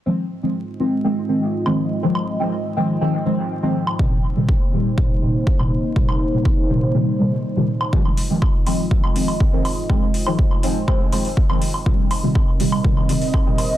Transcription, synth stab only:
\new Staff \with { instrumentName = "Synth stab" } { \clef bass \time 4/4 \key f \minor \tempo 4 = 122 <ees f aes c'>16 r8 <ees f aes c'>16 r8 <ees f aes c'>16 r16 <ees f aes c'>16 r16 <ees f aes c'>16 r8 <ees f aes c'>16 r8 | <ees f aes c'>16 r8 <ees f aes c'>16 r8 <ees f aes c'>16 r16 <ees f aes c'>16 r16 <ees f aes c'>16 r8 <ees f aes c'>16 r8 | <bes, c ees g>16 r8 <bes, c ees g>16 r8 <bes, c ees g>16 r16 <bes, c ees g>16 r16 <bes, c ees g>16 r8 <bes, c ees g>16 r8 | <bes, c ees g>16 r8 <bes, c ees g>16 r8 <bes, c ees g>16 r16 <bes, c ees g>16 r16 <bes, c ees g>16 r8 <bes, c ees g>16 r8 |
<ees f aes c'>16 r8 <ees f aes c'>16 r8 <ees f aes c'>16 r16 <ees f aes c'>16 r16 <ees f aes c'>16 r8 <ees f aes c'>16 r8 | <ees f aes c'>16 r8 <ees f aes c'>16 r8 <ees f aes c'>16 r16 <ees f aes c'>16 r16 <ees f aes c'>16 r8 <ees f aes c'>16 r8 | <bes, c ees g>16 r8 <bes, c ees g>16 r8 <bes, c ees g>16 r16 <bes, c ees g>16 r16 <bes, c ees g>16 r8 <bes, c ees g>16 r8 | }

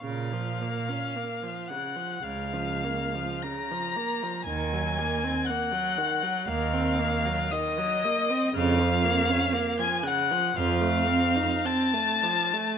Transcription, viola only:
\new Staff \with { instrumentName = "Viola" } { \clef bass \time 4/4 \key bes \minor \tempo 4 = 57 des16 f16 bes16 des'16 bes16 f16 des16 f16 des16 f16 bes16 f16 des16 f16 bes16 f16 | ees16 ges16 bes16 c'16 bes16 ges16 ees16 ges16 bes16 c'16 bes16 ges16 ees16 ges16 bes16 c'16 | des16 f16 bes16 des'16 bes16 f16 des16 f16 f16 a16 c'16 ees'16 c'16 a16 f16 a16 | }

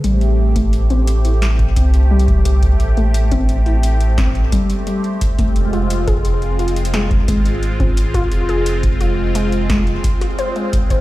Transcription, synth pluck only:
\new Staff \with { instrumentName = "Synth pluck" } { \time 4/4 \key a \minor \tempo 4 = 87 g16 r8 a16 r16 c'16 r16 e'16 r8 c'16 r16 g16 r16 g16 r16 | r16 a16 r16 c'16 r16 e'16 r8 c'16 r16 g16 r16 g16 r8 a16 | r16 f'16 r16 aes'16 r8 f'16 r16 aes16 r16 aes16 r8 c'16 r16 f'16 | r16 aes'16 r8 f'16 r16 aes16 r16 aes16 r8 f'16 c''16 aes16 r16 c''16 | }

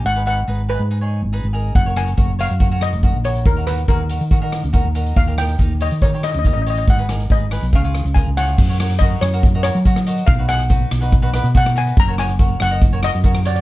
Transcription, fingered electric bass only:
\new Staff \with { instrumentName = "Fingered electric bass" } { \clef bass \time 4/4 \key fis \major \tempo 4 = 141 gis,,4 gis,,8. gis,4 gis,,8 gis,,8. | fis,,4 fis,,8. fis,4 fis,,8 ais,,8. | dis,4 dis,8. dis4 dis,8 dis,8. | dis,4 dis,8. dis4 dis,8 a,,8. |
gis,,4 gis,,8. b,,16 cis,8. cis,8 cis,8. | fis,4. fis,4~ fis,16 fis4~ fis16 | b,,4. b,,4~ b,,16 b,4~ b,16 | fis,,4. fis,,4~ fis,,16 fis,4~ fis,16 | }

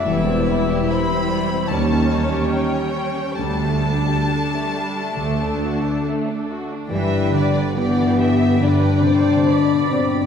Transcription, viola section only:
\new Staff \with { instrumentName = "Viola section" } { \time 4/4 \key g \major \tempo 4 = 70 << { g1~ | g2 a4.~ a16 r16 | b'4 g'4 b'8 c''8 d''4 | } \\ { e'2 des'2 | d'2.~ d'8. r16 | r1 | } >> }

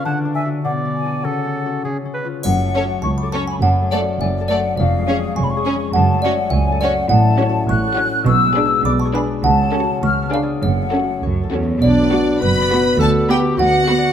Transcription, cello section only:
\new Staff \with { instrumentName = "Cello section" } { \clef bass \time 2/4 \key fis \minor \tempo 4 = 102 r2 | r2 | fis,4 cis,4 | fis,4 fis,4 |
eis,4 eis,4 | fis,4 cis,4 | a,4 a,4 | b,4 b,4 |
cis,4 cis,4 | fis,4 fis,8 e,8 | \key b \minor b,4 fis,4 | d,4 d,4 | }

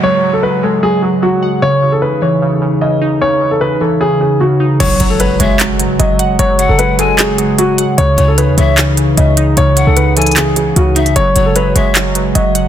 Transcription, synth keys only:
\new Staff \with { instrumentName = "Synth keys" } { \clef bass \time 4/4 \key cis \minor \tempo 4 = 151 <fis fis''>8 fis8 fis8 gis8 fis8 fis8 fis8 fis''8 | cis8 cis8 cis8 e8 cis8 cis8 cis8 dis'8 | cis8 cis8 cis8 e8 cis8 cis8 cis8 dis'8 | fis8 fis8 fis8 gis8 fis8 fis8 fis8 fis''8 |
fis8 fis8 fis8 gis8 fis8 fis8 fis8 fis''8 | cis8 cis8 cis8 e8 cis8 cis8 cis8 dis'8 | cis8 cis8 cis8 e8 cis8 cis8 cis8 dis'8 | fis8 fis8 fis8 gis8 fis8 fis8 fis8 fis''8 | }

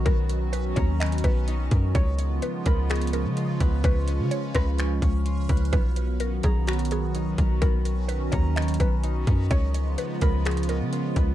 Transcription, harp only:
\new Staff \with { instrumentName = "Harp" } { \time 4/4 \key b \lydian \tempo 4 = 127 <b dis' ais' ais''>4. ais''8 b8 b8 dis'8 ais'8 | cis'4. b''8 cis'8 cis'8 eis'8 b'8 | cis'4. b''8 cis'8 cis'8 eis'8 b'8 | b4. ais''8 b8 b8 dis'8 ais'8 |
b4. ais''8 b8 b8 dis'8 ais'8 | cis'4. b''8 cis'8 cis'8 eis'8 b'8 | }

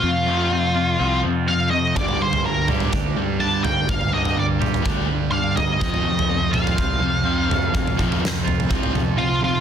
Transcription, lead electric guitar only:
\new Staff \with { instrumentName = "Lead electric guitar" } { \time 4/4 \key f \mixolydian \tempo 4 = 125 f'2~ f'8 r8 f''8 ees''8 | d''8 c''8 bes'8 r4. a''8 g''8 | f''8 ees''8 d''8 r4. f''8 ees''8~ | ees''4. f''2~ f''8~ |
f''2. <f' f''>8 <f' f''>8 | }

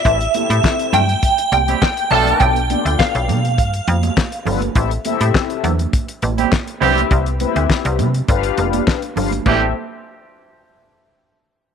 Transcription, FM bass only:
\new Staff \with { instrumentName = "FM bass" } { \clef bass \time 4/4 \key a \minor \tempo 4 = 102 a,,8 r16 a,16 r8 g,8 r8 c,8 r8 b,,8 | b,,8. d,16 r16 b,,16 b,8 g,8 f,8 r8 g,,8 | a,,8 r16 a,16 r8 e,8 r8 a,,8 r8 c,8 | c,8. d,16 r16 c,16 c8 g,,8 f,,8 r8 g,,8 |
a,,8 r2. r8 | }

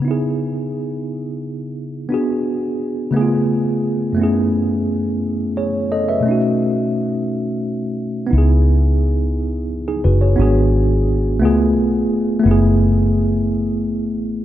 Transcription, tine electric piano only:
\new Staff \with { instrumentName = "Tine electric piano" } { \time 6/8 \key cis \minor \tempo 4. = 58 << { r2. | r2. | r2 <gis' cis''>8 <a' dis''>16 <b' e''>16~ | <b' e''>16 r2 r8. |
r2 r16 <dis' gis'>16 <fis' b'>16 <gis' cis''>16~ | <gis' cis''>16 r2 r8. | r2. | } \\ { <cis b dis' e' gis'>2. | <b d' fis' gis'>4. <cis a b dis' eis' gis'>4. | <fis, a b cis' e' gis'>2. | <b, a cis' dis' fis'>2. |
<b dis' e' gis'>2. | <b d' fis' gis'>4. <a b eis' gis'>4. | <a b e' gis'>2. | } >> }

